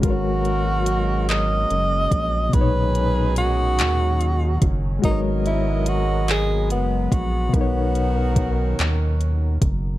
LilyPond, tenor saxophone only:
\new Staff \with { instrumentName = "Tenor saxophone" } { \time 6/8 \key b \major \tempo 4. = 48 fis'4. dis''4. | b'4 fis'4. r8 | dis'8 e'8 fis'8 gis'8 b8 fis'8 | b2 r4 | }